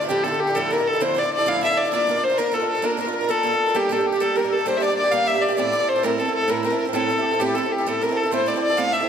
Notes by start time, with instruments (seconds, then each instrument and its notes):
0.01 steel-string acoustic guitar D3 A3 D4 F4
0.09 steel-string acoustic guitar D2 D3 F3 D4 E4 A4, fiddle G4, accordion G4
0.24 steel-string acoustic guitar D3 D4 E4 A4, fiddle A4, accordion A4
0.32 steel-string acoustic guitar D3 D4 E4 A4
0.40 fiddle G4, accordion G4
0.47 steel-string acoustic guitar D3 D4 E4 A4
0.55 steel-string acoustic guitar D2 D3 F3 D4 E4 A4, fiddle A4, accordion A4
0.71 steel-string acoustic guitar D3 D4 E4 A4, accordion A#4, fiddle A#4
0.78 steel-string acoustic guitar D3 D4 E4 A4
0.86 accordion A4, fiddle A4
0.93 steel-string acoustic guitar D3 D4 E4 A4
1.00 steel-string acoustic guitar D2 D3 F3 D4 E4 A4, accordion C5, fiddle C5
1.14 steel-string acoustic guitar D3 D4 E4 A4, accordion D5
1.19 steel-string acoustic guitar A4, fiddle D5
1.24 steel-string acoustic guitar D3 D4 E4
1.33 accordion D5, fiddle D5
1.38 steel-string acoustic guitar D3 D4 E4 A4
1.46 steel-string acoustic guitar D2 D3 F3 D4 E4 A4, accordion F5, fiddle F5
1.61 steel-string acoustic guitar D3 D4 E4 A4, accordion E5, fiddle E5
1.69 steel-string acoustic guitar D3 D4 E4 A4
1.78 fiddle D5, accordion D5
1.85 steel-string acoustic guitar D3 D4 E4 A4
1.92 steel-string acoustic guitar A#3 D4 F4 A#4, fiddle D5, accordion D5
2.07 steel-string acoustic guitar A#3 D4 F4 A#4
2.15 steel-string acoustic guitar D4 F4 A#4
2.24 fiddle C5, accordion C5
2.30 steel-string acoustic guitar D4 F4 A#4
2.38 steel-string acoustic guitar A#3 D4 F4 A#4, fiddle A#4, accordion A#4
2.52 steel-string acoustic guitar A#3 D4 F4 A#4, accordion A4, fiddle A4
2.60 steel-string acoustic guitar D4 F4 A#4
2.69 fiddle A4
2.75 steel-string acoustic guitar D4 F4 A#4
2.82 steel-string acoustic guitar A#3 D4 F4 A#4, accordion A#4, fiddle A#4
2.97 steel-string acoustic guitar A#3 D4 F4 A#4, accordion A#4, fiddle A#4
3.05 steel-string acoustic guitar D4 F4 A#4
3.13 accordion A#4, fiddle A#4
3.21 steel-string acoustic guitar D4 F4 A#4
3.28 steel-string acoustic guitar A#3 D4 F4 A#4, accordion A4, fiddle A4
3.43 steel-string acoustic guitar A#3 D4 F4 A#4
3.51 steel-string acoustic guitar D4 F4 A#4
3.66 steel-string acoustic guitar D4 F4 A#4
3.74 steel-string acoustic guitar G3 A#3 D4 G4, accordion G4, fiddle G4
3.87 steel-string acoustic guitar G3, accordion G4
3.91 steel-string acoustic guitar A#3 D4 G4, accordion A4, fiddle A4
3.97 steel-string acoustic guitar A#3 D4 G4
4.07 fiddle G4, accordion G4
4.12 steel-string acoustic guitar A#3 D4 G4
4.20 steel-string acoustic guitar G3 A#3 D4 G4, fiddle A4, accordion A4
4.36 steel-string acoustic guitar G3 A#3 D4 G4, accordion A#4, fiddle A#4
4.42 steel-string acoustic guitar A#3 D4 G4
4.50 accordion A4, fiddle A4
4.57 steel-string acoustic guitar A#3 D4 G4
4.66 steel-string acoustic guitar G3 A#3 D4 G4, accordion C5, fiddle C5
4.77 steel-string acoustic guitar G3, accordion D5, fiddle E5
4.82 steel-string acoustic guitar A#3 D4 G4, fiddle D5
4.88 steel-string acoustic guitar A#3 D4 G4
4.96 accordion D5, fiddle D5
5.03 steel-string acoustic guitar A#3 D4 G4
5.12 steel-string acoustic guitar G3 A#3 D4 G4, fiddle F5, accordion F5
5.26 steel-string acoustic guitar G3 A#3 D4 G4, accordion E5, fiddle E5
5.34 steel-string acoustic guitar A#3 D4 G4
5.41 accordion D5, fiddle D5
5.48 steel-string acoustic guitar A#3 D4 G4
5.57 steel-string acoustic guitar A2 A3 C4 E4 A4, accordion D5, fiddle D5
5.72 steel-string acoustic guitar A3 C4 E4 A4
5.80 steel-string acoustic guitar C4 E4 A4
5.87 accordion C5, fiddle C5
5.96 steel-string acoustic guitar C4 E4 A4
6.03 steel-string acoustic guitar A2 A3 C4 E4 A4, fiddle A#4, accordion A#4
6.18 steel-string acoustic guitar A3 C4 E4 A4, accordion A4, fiddle A4
6.25 steel-string acoustic guitar C4 E4 A4
6.34 accordion A4, fiddle A4
6.41 steel-string acoustic guitar C4 E4 A4
6.48 steel-string acoustic guitar A2 A3 C4 E4 A4, accordion A#4, fiddle A#4
6.63 steel-string acoustic guitar A3 C4 E4 A4, accordion A#4, fiddle A#4
6.70 steel-string acoustic guitar C4 E4 A4
6.78 accordion A#4, fiddle A#4
6.85 steel-string acoustic guitar C4 E4 A4
6.93 steel-string acoustic guitar A2 A3 C4 E4 A4, accordion A4, fiddle A4
7.05 accordion A4 A#4
7.09 steel-string acoustic guitar A3 C4 E4 A4
7.16 steel-string acoustic guitar C4 E4 A4, accordion G4
7.24 accordion A4
7.31 steel-string acoustic guitar C4 E4 A4
7.39 steel-string acoustic guitar A2 A3 C4 E4 A4, accordion G4, fiddle G4
7.53 steel-string acoustic guitar A3 C4, accordion A4, fiddle A4
7.57 steel-string acoustic guitar E4 A4
7.63 steel-string acoustic guitar C4 E4 A4
7.71 accordion G4, fiddle G4
7.78 steel-string acoustic guitar C4 E4 A4
7.85 steel-string acoustic guitar A2 A3 C4 E4 A4, accordion A4, fiddle A4
8.00 steel-string acoustic guitar A3 C4, accordion A#4, fiddle A#4
8.04 steel-string acoustic guitar E4 A4
8.09 steel-string acoustic guitar C4 E4 A4
8.15 accordion A4, fiddle A4
8.23 steel-string acoustic guitar C4 E4 A4
8.30 steel-string acoustic guitar A2 A3 C4 E4 A4, accordion C5, fiddle C5
8.46 steel-string acoustic guitar A3 C4 E4 A4, fiddle D5
8.54 steel-string acoustic guitar C4 E4 A4
8.61 accordion D5, fiddle D5
8.69 steel-string acoustic guitar C4 E4 A4
8.77 steel-string acoustic guitar A2 A3 C4 E4 A4, accordion F5, fiddle F5
8.91 steel-string acoustic guitar A3 C4 E4, accordion E5, fiddle E5
8.96 steel-string acoustic guitar A4
9.00 steel-string acoustic guitar C4 E4 A4